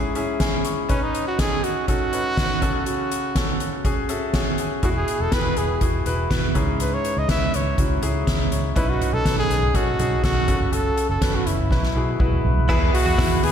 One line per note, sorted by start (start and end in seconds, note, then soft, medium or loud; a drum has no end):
0.00 0.92 G#2 medium
0.00 0.15 C#4 medium
0.00 0.16 E4 medium
0.00 0.92 F#4 medium
0.00 0.16 G#4 medium
0.15 0.33 C#4 medium
0.15 0.33 E4 medium
0.15 0.33 G#4 medium
0.15 0.39 E5 medium
0.15 closed hi-hat medium
0.40 0.75 C#4 medium
0.40 0.75 E4 medium
0.40 0.75 G#4 medium
0.40 0.63 G#5 medium
0.40 kick loud
0.40 snare loud
0.40 closed hi-hat medium
0.65 0.88 C#6 medium
0.65 closed hi-hat medium
0.89 1.24 C#4 medium
0.89 1.04 C#4 medium
0.89 1.24 D#4 medium
0.89 1.24 B4 medium
0.89 kick medium
0.89 closed hi-hat medium
1.03 1.27 D#4 medium
1.15 closed hi-hat medium
1.27 1.41 F#4 medium
1.38 1.73 C#4 medium
1.38 1.74 D#4 medium
1.38 1.66 G#4 medium
1.38 1.74 A4 medium
1.38 kick loud
1.38 snare loud
1.38 closed hi-hat medium
1.64 1.88 F#4 medium
1.64 closed hi-hat medium
1.88 2.05 C#4 medium
1.88 2.06 D#4 medium
1.88 2.83 F#4 loud
1.88 2.06 A4 medium
1.88 kick medium
1.88 closed hi-hat medium
2.12 2.30 C#4 medium
2.12 2.30 D#4 medium
2.12 2.31 B4 medium
2.12 closed hi-hat medium
2.37 2.60 C#4 medium
2.37 2.62 D#4 medium
2.37 2.62 B4 medium
2.37 kick loud
2.37 snare loud
2.37 closed hi-hat medium
2.61 3.32 C#3 medium
2.61 3.21 C#4 medium
2.61 3.21 F#4 medium
2.61 3.21 A4 medium
2.61 kick medium
2.61 closed hi-hat medium
2.86 3.81 F#4 medium
2.86 closed hi-hat medium
3.12 closed hi-hat medium
3.35 3.70 C#4 medium
3.35 3.71 F#4 medium
3.35 3.71 A4 medium
3.35 kick loud
3.35 snare loud
3.35 closed hi-hat medium
3.60 closed hi-hat medium
3.84 4.02 C#4 medium
3.84 4.02 F#4 medium
3.84 4.02 G#4 medium
3.84 kick medium
3.84 closed hi-hat medium
4.09 4.26 C#4 medium
4.09 4.27 F#4 medium
4.09 4.27 A4 medium
4.09 4.32 E5 medium
4.09 closed hi-hat medium
4.34 4.69 C#4 medium
4.34 4.69 F#4 medium
4.34 4.69 G#4 medium
4.34 4.57 F#5 medium
4.34 kick loud
4.34 snare loud
4.34 closed hi-hat medium
4.58 4.82 G#5 medium
4.58 closed hi-hat medium
4.83 5.03 E1 medium
4.83 5.53 B2 medium
4.83 5.18 E4 medium
4.83 5.18 F#4 medium
4.83 4.90 F#4 medium
4.83 5.18 G#4 medium
4.83 kick medium
4.83 closed hi-hat medium
4.97 5.23 G#4 medium
5.08 closed hi-hat medium
5.20 5.30 E1 medium
5.20 5.35 A4 medium
5.32 5.52 E1 medium
5.32 5.67 E4 medium
5.32 5.67 F#4 medium
5.32 5.38 G4 medium
5.32 5.59 B4 medium
5.32 kick loud
5.32 snare loud
5.32 closed hi-hat medium
5.39 5.70 G#4 medium
5.57 5.77 E1 medium
5.57 5.82 G#4 medium
5.57 closed hi-hat medium
5.81 6.01 E1 medium
5.81 5.99 E4 medium
5.81 5.99 F#4 medium
5.81 5.99 G#4 medium
5.81 kick medium
5.81 closed hi-hat medium
6.06 6.26 E1 medium
6.06 6.23 E4 medium
6.06 6.23 F#4 medium
6.06 6.24 B4 medium
6.06 closed hi-hat medium
6.30 6.51 E1 loud
6.30 6.54 E4 medium
6.30 6.55 F#4 medium
6.30 6.55 B4 medium
6.30 kick loud
6.30 snare loud
6.30 closed hi-hat medium
6.55 6.95 C#2 medium
6.55 7.25 G#2 medium
6.55 7.14 C#4 medium
6.55 7.14 E4 medium
6.55 7.14 G#4 medium
6.55 kick medium
6.55 closed hi-hat medium
6.80 6.95 B4 medium
6.80 closed hi-hat medium
6.94 7.20 C#5 medium
7.05 closed hi-hat medium
7.17 7.27 C#2 medium
7.17 7.30 D#5 medium
7.28 7.63 C#4 medium
7.28 7.64 E4 medium
7.28 7.64 B4 medium
7.28 7.57 E5 medium
7.28 kick loud
7.28 snare loud
7.28 closed hi-hat medium
7.54 7.74 C#2 medium
7.54 7.79 C#5 medium
7.54 closed hi-hat medium
7.77 7.98 C#2 medium
7.77 7.95 C#4 medium
7.77 7.95 E4 medium
7.77 7.96 F#4 medium
7.77 kick loud
7.77 closed hi-hat medium
8.02 8.23 C#2 medium
8.02 8.19 C#4 medium
8.02 8.20 E4 medium
8.02 8.20 G#4 medium
8.02 closed hi-hat medium
8.27 8.47 C#2 medium
8.27 8.51 E5 medium
8.27 kick loud
8.27 snare loud
8.27 closed hi-hat medium
8.52 8.72 C#2 medium
8.52 8.98 C#5 medium
8.52 closed hi-hat medium
8.76 8.96 B1 medium
8.76 9.11 C#4 medium
8.76 9.11 D#4 medium
8.76 8.91 E4 medium
8.76 9.11 B4 medium
8.76 kick medium
8.76 closed hi-hat medium
8.90 9.15 F#4 medium
9.01 closed hi-hat medium
9.01 floor tom medium
9.13 9.23 B1 medium
9.13 9.38 A4 medium
9.25 9.46 B1 medium
9.25 9.60 C#4 medium
9.25 9.60 D#4 medium
9.25 9.60 B4 medium
9.25 kick loud
9.25 snare loud
9.25 closed hi-hat loud
9.39 9.77 G#4 loud
9.50 9.70 B1 medium
9.50 closed hi-hat medium
9.63 floor tom medium
9.74 9.95 B1 medium
9.74 9.92 C#4 medium
9.74 9.92 D#4 medium
9.74 10.24 F#4 medium
9.74 9.92 A4 medium
9.74 kick medium
9.74 closed hi-hat medium
9.99 10.19 B1 medium
9.99 10.16 C#4 medium
9.99 10.16 D#4 medium
9.99 10.17 G#4 medium
9.99 closed hi-hat medium
9.99 floor tom medium
10.23 10.44 B1 loud
10.23 10.46 C#4 medium
10.23 10.48 D#4 medium
10.23 10.75 F#4 loud
10.23 10.47 A4 medium
10.23 kick loud
10.23 snare loud
10.23 closed hi-hat medium
10.47 10.89 F#1 medium
10.47 11.18 C#3 medium
10.47 11.07 C#4 medium
10.47 11.07 F#4 medium
10.47 11.07 A4 medium
10.47 kick medium
10.47 closed hi-hat medium
10.60 floor tom medium
10.73 11.09 A4 medium
10.73 closed hi-hat medium
10.98 closed hi-hat medium
11.09 11.20 F#1 medium
11.09 11.37 A4 medium
11.21 11.42 F#1 medium
11.21 11.56 C#4 medium
11.21 11.57 F#4 medium
11.21 11.57 B4 medium
11.21 kick loud
11.21 snare loud
11.21 closed hi-hat medium
11.35 11.48 F#4 medium
11.46 11.71 F#1 medium
11.46 12.45 E4 medium
11.46 closed hi-hat medium
11.59 floor tom medium
11.71 11.91 B1 medium
11.71 12.41 B2 medium
11.71 12.41 F#3 medium
11.71 11.88 E4 medium
11.71 11.89 F#4 medium
11.71 11.89 B4 medium
11.71 kick medium
11.71 snare soft
11.83 snare soft
11.95 12.16 B1 medium
11.95 12.13 E4 medium
11.95 12.13 F#4 medium
11.95 12.14 G#4 medium
12.20 12.40 B1 medium
12.20 12.55 E4 medium
12.20 12.55 F#4 medium
12.20 12.55 B4 medium
12.20 kick loud
12.32 mid tom medium
12.45 12.65 B1 medium
12.45 floor tom medium
12.57 floor tom medium
12.69 12.89 E2 loud
12.69 13.39 B2 medium
12.69 13.04 B3 loud
12.69 12.81 E4 medium
12.69 13.04 E4 loud
12.69 13.04 G#4 loud
12.69 13.04 B4 loud
12.69 kick loud
12.69 crash medium
12.94 13.45 F#4 loud
12.94 hi-hat pedal medium
12.94 open hi-hat medium
13.06 13.16 E2 loud
13.06 13.18 F#4 medium
13.18 13.36 B3 medium
13.18 13.36 E4 medium
13.18 13.30 E4 medium
13.18 13.36 G#4 medium
13.18 13.36 B4 medium
13.18 kick loud
13.18 snare loud
13.18 hi-hat pedal medium
13.18 open hi-hat loud
13.42 13.52 D#2 medium
13.42 13.52 B3 medium
13.42 13.52 E4 medium
13.42 13.52 G#4 medium
13.42 13.52 B4 medium
13.42 hi-hat pedal medium
13.42 open hi-hat medium